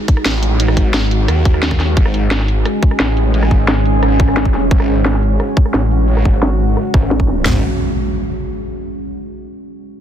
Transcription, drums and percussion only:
0.08 kick, closed hi-hat
0.17 cross-stick
0.25 snare, closed hi-hat
0.43 closed hi-hat
0.60 closed hi-hat
0.68 cross-stick
0.77 kick, closed hi-hat
0.94 snare, closed hi-hat
1.11 closed hi-hat
1.28 cross-stick, closed hi-hat
1.45 kick, closed hi-hat
1.54 cross-stick
1.63 snare, closed hi-hat
1.71 kick, cross-stick
1.80 snare, closed hi-hat
1.97 kick, closed hi-hat
2.05 cross-stick
2.14 closed hi-hat
2.31 snare, closed hi-hat
2.40 snare
2.48 closed hi-hat
2.65 cross-stick, closed hi-hat
2.83 kick, closed hi-hat
2.91 cross-stick
3.00 snare, closed hi-hat
3.17 closed hi-hat
3.34 closed hi-hat
3.43 cross-stick
3.51 kick, closed hi-hat
3.68 snare, closed hi-hat
3.85 closed hi-hat
4.03 cross-stick, closed hi-hat
4.20 kick, closed hi-hat
4.28 cross-stick
4.37 snare, closed hi-hat
4.45 kick
4.54 snare, closed hi-hat
4.71 kick, closed hi-hat
4.80 cross-stick
4.88 closed hi-hat
5.05 snare, closed hi-hat
5.14 snare
5.23 closed hi-hat
5.40 cross-stick, closed hi-hat
5.57 kick
5.66 cross-stick
5.74 snare, closed hi-hat
5.91 closed hi-hat
6.08 closed hi-hat
6.17 cross-stick
6.25 kick, closed hi-hat
6.43 snare, closed hi-hat
6.60 closed hi-hat
6.77 cross-stick, closed hi-hat
6.94 kick
7.03 cross-stick
7.11 snare, closed hi-hat
7.20 kick, cross-stick
7.28 snare, closed hi-hat
7.45 snare, floor tom

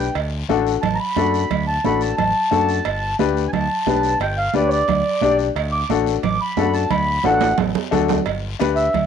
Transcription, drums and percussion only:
0.15 cowbell, high conga, long guiro
0.50 high conga, short guiro
0.67 short guiro
0.83 cowbell, high conga, low conga, long guiro
1.16 high conga, short guiro
1.34 short guiro
1.51 cowbell, high conga, low conga, long guiro
1.84 high conga, short guiro
2.01 short guiro
2.18 cowbell, high conga, low conga, long guiro
2.52 high conga, short guiro
2.69 short guiro
2.85 cowbell, high conga, long guiro
3.19 high conga, short guiro
3.37 short guiro
3.53 cowbell, high conga, low conga, long guiro
3.87 high conga, short guiro
4.03 short guiro
4.20 cowbell, high conga, long guiro
4.54 high conga, short guiro
4.71 short guiro
4.88 cowbell, high conga, low conga, long guiro
5.21 high conga, short guiro
5.39 short guiro
5.56 cowbell, high conga, long guiro
5.90 high conga, short guiro
6.07 short guiro
6.23 cowbell, high conga, low conga, long guiro
6.57 high conga, low timbale, short guiro
6.74 short guiro
6.91 cowbell, high conga, low conga, long guiro
7.24 high conga, high timbale, short guiro
7.41 high conga, high timbale, short guiro
7.58 cowbell, low conga, low timbale, long guiro
7.75 low conga, low timbale
7.92 low conga, low timbale, short guiro
8.09 low conga, low timbale, short guiro
8.26 cowbell, high conga, long guiro
8.60 cowbell, high conga, short guiro
8.76 short guiro
8.93 cowbell, high conga, low conga, long guiro

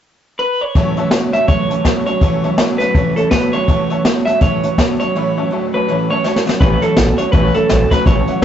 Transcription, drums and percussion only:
0.75 kick, snare, closed hi-hat
0.97 closed hi-hat
1.11 snare, closed hi-hat
1.33 closed hi-hat
1.48 kick, closed hi-hat
1.71 closed hi-hat
1.85 kick, snare, closed hi-hat
2.06 closed hi-hat
2.21 kick, snare, closed hi-hat
2.44 closed hi-hat
2.58 snare, closed hi-hat
2.80 snare, closed hi-hat
2.95 kick, closed hi-hat
3.17 closed hi-hat
3.31 kick, snare, closed hi-hat
3.53 closed hi-hat
3.68 kick, closed hi-hat
3.90 closed hi-hat
4.05 snare, closed hi-hat
4.27 closed hi-hat
4.41 kick, closed hi-hat
4.63 closed hi-hat
4.78 kick, snare, closed hi-hat
5.00 closed hi-hat
6.24 snare
6.36 snare
6.49 snare
6.61 kick, closed hi-hat
6.82 closed hi-hat
6.97 snare, closed hi-hat
7.18 closed hi-hat
7.33 kick, closed hi-hat
7.54 closed hi-hat
7.69 snare, closed hi-hat
7.91 kick, snare, closed hi-hat
8.06 kick, closed hi-hat
8.28 closed hi-hat

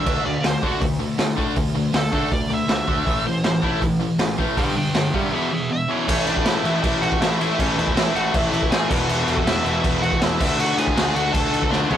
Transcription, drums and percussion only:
0.06 kick, crash
0.44 snare, open hi-hat
0.63 kick
0.81 kick, open hi-hat
1.19 snare, open hi-hat
1.38 kick
1.56 kick, open hi-hat
1.94 snare, open hi-hat
2.13 kick
2.32 kick, open hi-hat
2.69 snare, open hi-hat
2.88 kick
3.07 kick, open hi-hat
3.44 snare, open hi-hat
3.63 kick
3.82 kick, open hi-hat
4.19 snare, open hi-hat
4.39 kick
4.57 kick, open hi-hat
4.95 snare, open hi-hat
5.14 kick
6.08 kick, crash
6.27 crash
6.37 kick
6.46 snare, crash
6.65 crash
6.84 kick, crash
7.03 crash
7.12 kick
7.22 snare, crash
7.41 crash
7.59 kick, crash
7.79 crash
7.87 kick
7.97 snare, crash
8.16 crash
8.34 kick, crash
8.54 crash
8.62 kick
8.72 snare, crash
8.91 kick, crash
9.09 crash
9.28 crash
9.37 kick
9.47 snare, crash
9.66 crash
9.84 kick, crash
10.03 crash
10.12 kick
10.22 snare, crash
10.40 kick, crash
10.60 crash
10.78 crash
10.87 kick
10.97 snare, crash
11.16 crash
11.34 kick, crash
11.54 crash
11.62 kick
11.72 snare
11.91 floor tom

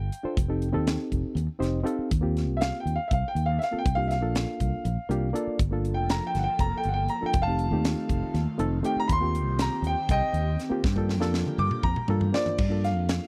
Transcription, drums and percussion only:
0.12 closed hi-hat
0.37 kick, closed hi-hat
0.62 closed hi-hat
0.87 snare, closed hi-hat
1.12 kick, closed hi-hat
1.37 closed hi-hat
1.62 snare, closed hi-hat
1.87 closed hi-hat
2.11 kick, closed hi-hat
2.37 snare, closed hi-hat
2.61 snare, closed hi-hat
2.87 closed hi-hat
3.11 kick, closed hi-hat
3.36 closed hi-hat
3.62 snare, closed hi-hat
3.86 kick, closed hi-hat
4.11 snare, closed hi-hat
4.35 snare, closed hi-hat
4.60 kick, closed hi-hat
4.85 closed hi-hat
5.11 closed hi-hat
5.36 closed hi-hat
5.59 kick, closed hi-hat
5.85 closed hi-hat
6.09 snare, closed hi-hat
6.35 snare, closed hi-hat
6.59 kick, closed hi-hat
6.84 closed hi-hat
7.09 closed hi-hat
7.33 kick, closed hi-hat
7.59 closed hi-hat
7.85 snare, closed hi-hat
8.09 kick, closed hi-hat
8.35 snare, closed hi-hat
8.59 closed hi-hat
8.84 closed hi-hat
9.09 kick, closed hi-hat
9.35 closed hi-hat
9.59 snare, closed hi-hat
9.84 closed hi-hat
10.09 kick, closed hi-hat
10.34 closed hi-hat
10.59 snare, closed hi-hat
10.84 kick, snare
10.96 kick
11.09 snare
11.21 snare
11.34 snare
11.46 mid tom
11.59 mid tom
11.71 mid tom
11.83 kick
11.96 mid tom
12.08 floor tom
12.21 floor tom
12.34 snare
12.46 floor tom
12.58 kick, crash
12.84 snare, closed hi-hat
13.09 snare, closed hi-hat

